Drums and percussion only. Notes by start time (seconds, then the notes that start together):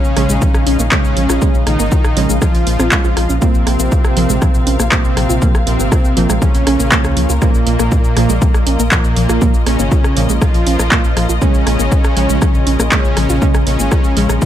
0.04 shaker
0.17 cross-stick, open hi-hat
0.29 shaker
0.42 kick, shaker
0.54 cross-stick, shaker
0.67 open hi-hat
0.79 shaker
0.92 kick, cross-stick, clap, shaker
1.04 shaker
1.17 open hi-hat
1.29 cross-stick, shaker
1.42 kick, shaker
1.55 shaker
1.67 cross-stick, open hi-hat
1.79 shaker
1.92 kick, shaker
2.04 cross-stick, shaker
2.17 open hi-hat
2.30 shaker
2.42 kick, cross-stick, shaker
2.55 open hi-hat, shaker
2.67 open hi-hat
2.80 cross-stick, shaker
2.92 kick, clap, shaker
3.04 shaker
3.17 cross-stick, open hi-hat
3.30 shaker
3.42 kick, shaker
3.55 shaker
3.67 cross-stick, open hi-hat
3.79 shaker
3.92 kick, shaker
4.05 cross-stick, shaker
4.17 open hi-hat
4.30 shaker
4.42 kick, cross-stick, shaker
4.55 shaker
4.67 open hi-hat
4.80 cross-stick, shaker
4.92 kick, clap, shaker
5.05 shaker
5.17 cross-stick, open hi-hat
5.30 shaker
5.42 kick, shaker
5.55 cross-stick, shaker
5.67 open hi-hat
5.80 shaker
5.92 kick, cross-stick, shaker
6.05 shaker
6.17 open hi-hat
6.30 cross-stick, shaker
6.42 kick, shaker
6.55 open hi-hat, shaker
6.67 cross-stick, open hi-hat
6.80 shaker
6.92 kick, clap, shaker
7.05 cross-stick, shaker
7.17 open hi-hat
7.29 shaker
7.42 kick, cross-stick, shaker
7.54 shaker
7.67 open hi-hat
7.79 cross-stick, shaker
7.92 kick, shaker
8.04 shaker
8.17 cross-stick, open hi-hat
8.29 shaker
8.42 kick, shaker
8.54 cross-stick, shaker
8.67 open hi-hat
8.79 shaker
8.92 kick, cross-stick, clap, shaker
9.04 shaker
9.17 open hi-hat
9.29 cross-stick, shaker
9.42 kick, shaker
9.54 shaker
9.67 cross-stick, open hi-hat
9.79 shaker
9.92 kick, shaker
10.04 cross-stick, shaker
10.17 open hi-hat
10.29 shaker
10.42 kick, cross-stick, shaker
10.54 open hi-hat, shaker
10.67 open hi-hat
10.79 cross-stick, shaker
10.92 kick, clap, shaker
11.04 shaker
11.17 cross-stick, open hi-hat
11.29 shaker
11.42 kick, shaker
11.54 shaker
11.67 cross-stick, open hi-hat
11.79 shaker
11.92 kick, shaker
12.04 cross-stick, shaker
12.17 open hi-hat
12.29 shaker
12.42 kick, cross-stick, shaker
12.55 shaker
12.67 open hi-hat
12.80 cross-stick, shaker
12.92 kick, clap, shaker
13.05 shaker
13.17 cross-stick, open hi-hat
13.29 shaker
13.42 kick, shaker
13.55 cross-stick, shaker
13.67 open hi-hat
13.79 shaker
13.92 kick, cross-stick, shaker
14.04 shaker
14.17 open hi-hat
14.29 cross-stick, shaker
14.42 kick, shaker